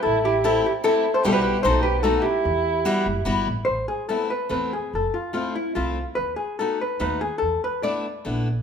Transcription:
X:1
M:3/4
L:1/16
Q:1/4=145
K:Em
V:1 name="Hollow-body jazz guitar"
A2 G2 A2 G2 A3 c | B/2 A/2 B B2 c2 B2 A2 G2- | G8 z4 | [K:Am] c2 ^G2 A2 B2 B2 G2 |
A2 F2 F2 E2 F3 z | B2 ^G2 A2 B2 B2 G2 | A2 B2 d6 z2 |]
V:2 name="Violin"
E2 E2 E2 E2 E3 A | G/2 F/2 G G2 A2 G2 F2 E2- | E8 z4 | [K:Am] z12 |
z12 | z12 | z12 |]
V:3 name="Steel-string acoustic guitar"
z4 [A,CEG]2 z2 [A,CEG]2 z2 | [G,B,EG]4 [A,B,^DF]2 z2 [A,B,DF]2 z2 | z4 [G,B,EF]2 z2 [G,B,EF]2 z2 | [K:Am] z4 [A,B,CE]2 z2 [A,B,CE]2 z2 |
z4 [A,CEF]2 z2 [A,CEF]2 z2 | z4 [A,B,^D^F]2 z2 [A,B,DF]2 z2 | z4 [A,B,DE]2 z2 [A,B,DE]2 z2 |]
V:4 name="Upright bass" clef=bass
A,,,8 z4 | B,,,4 B,,,8 | E,,6 F,,,2 G,,,2 A,,,2 | [K:Am] A,,,2 z6 E,,4 |
F,,,2 z6 C,,4 | ^D,,2 z6 D,,4 | E,,2 z6 _B,,,4 |]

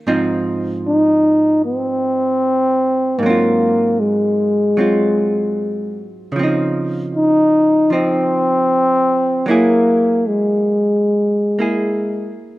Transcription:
X:1
M:4/4
L:1/8
Q:"Swing" 1/4=76
K:Ab
V:1 name="Hollow-body jazz guitar"
[A,,F,CE]8 | [A,,_G,CF]4 [G,CF]4 | [D,F,CE]4 [F,CE]4 | [_G,B,_FA]4- [G,B,FA] [B,FA]3 |]
V:2 name="Trombone"
z2 E2 C4 | B,2 A,4- A, z | z2 E2 C4 | B,2 A,4- A, z |]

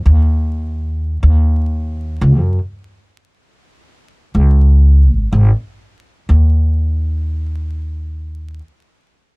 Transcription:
X:1
M:4/4
L:1/16
Q:1/4=77
K:Dbmix
V:1 name="Upright bass" clef=bass
E,,6 E,,4- E,, D,, G,, z3 | z6 D,,4 A,,, A,,, z4 | E,,12 z4 |]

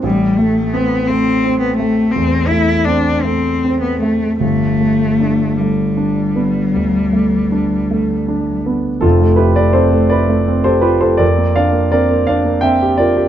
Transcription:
X:1
M:12/8
L:1/16
Q:3/8=55
K:Flyd
V:1 name="Grand piano"
z24 | z24 | [FA]2 [GB] [Bd] [Ac]2 [Bd]3 [Ac] [GB] [Ac] [_Bd]2 [df]2 [Bd]2 [df]2 [eg]2 [Bd]2 |]
V:2 name="Grand piano"
A,,,2 A,2 C2 A,2 C2 A,2 E,,2 A,2 C2 A,2 C2 A,2 | G,,,2 A,2 D2 A,2 D2 B,2 D,,2 A,2 D2 A,2 D2 B,2 | [F,,,F,,] A, E A, C A, E A, C G F G F,, _B, D B, C B, D B, C G F G |]
V:3 name="Cello"
G,2 A,2 B,2 C3 B, A,2 C2 E2 D2 C3 B, A,2 | A,6 G,16 z2 | z24 |]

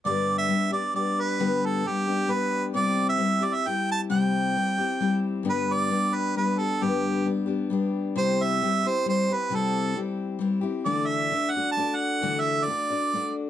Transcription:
X:1
M:3/4
L:1/16
Q:1/4=133
K:G
V:1 name="Harmonica"
d3 e3 d2 d2 B2- | B2 A2 G4 B3 z | d3 e3 d e g2 a2 | g8- g2 z2 |
B2 d4 B2 B2 A2 | G4 z8 | c2 e4 c2 c2 B2 | A4 z8 |
d2 e4 f2 a2 f2- | f2 e2 d6 z2 |]
V:2 name="Steel-string acoustic guitar"
[G,,D,G,B,DG]4 [G,B,DG]2 [G,B,DG]2 [G,B,DG]4 | [G,,D,G,B,DG]4 [G,B,DG]2 [G,B,DG]2 [G,B,DG]4 | [C,G,CEG]4 [G,CEG]2 [CEG]2 [G,CEG]4 | [C,G,CEG]4 [G,CEG]2 [CEG]2 [G,CEG]4 |
[G,,D,G,B,DG]4 [G,B,DG]4 [G,B,DG]2 [G,B,DG]2 | [G,,D,G,B,DG]4 [G,B,DG]2 [G,B,DG]2 [G,B,DG]4 | [C,G,CEG]4 [G,CEG]2 [CEG]2 [G,CEG]2 [CEG]2 | [C,G,CEG]4 [G,CEG]4 [G,CEG]2 [CEG]2 |
[D,E,A,DFd]4 [A,DFd]2 [A,DFd]2 [A,DFd]4 | [D,E,A,DFd]4 [A,DFd]2 [A,DFd]2 [A,DFd]4 |]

